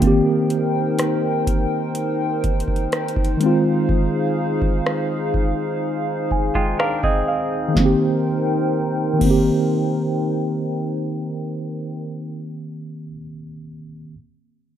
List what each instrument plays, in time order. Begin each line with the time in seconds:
0.00 tine electric piano D#3 A#3, analog synth pad D#4 A#4 C5 G5, kick, closed hi-hat
0.04 tine electric piano C4 G4
0.50 closed hi-hat
0.99 cross-stick, closed hi-hat
1.47 kick, closed hi-hat
1.95 closed hi-hat
2.44 kick, closed hi-hat
2.60 closed hi-hat
2.68 kick
2.76 closed hi-hat
2.92 cross-stick, closed hi-hat
3.08 closed hi-hat
3.16 kick
3.25 closed hi-hat
3.37 tine electric piano D#3 G#3, analog synth pad G#4 F5, closed hi-hat
3.43 tine electric piano C4 F4
3.89 kick
4.62 kick
4.86 cross-stick
5.34 kick
6.31 tine electric piano G#5, kick
6.55 clean electric guitar G#3 F4, tine electric piano G5, kick
6.79 clean electric guitar D4 A#4, tine electric piano F5, cross-stick
7.03 clean electric guitar C4 G#4, tine electric piano D#5, kick
7.28 tine electric piano F5
7.68 tine electric piano D#3
7.74 tine electric piano A#3, analog synth pad D#4 A#4 C5 G5, kick, snare
7.80 tine electric piano C4
7.85 tine electric piano G4
9.13 tine electric piano D#3
9.19 tine electric piano A#3, kick, crash
9.25 tine electric piano C4
9.31 tine electric piano G4